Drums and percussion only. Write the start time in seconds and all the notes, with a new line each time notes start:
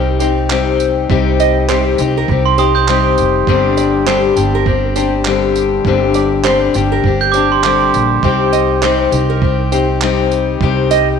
0.20 tambourine
0.50 clap
0.80 tambourine
1.10 kick
1.40 tambourine
1.69 clap
1.98 tambourine
2.28 kick
2.58 tambourine
2.88 clap
3.18 tambourine
3.47 kick
3.77 tambourine
4.07 clap
4.37 tambourine
4.66 kick
4.96 tambourine
5.25 clap
5.56 tambourine
5.85 kick
6.14 tambourine
6.44 clap
6.74 tambourine
7.04 kick
7.34 tambourine
7.64 clap
7.94 tambourine
8.23 kick
8.53 tambourine
8.83 clap
9.12 tambourine
9.42 kick
9.72 tambourine
10.01 clap
10.31 tambourine
10.61 kick
10.91 tambourine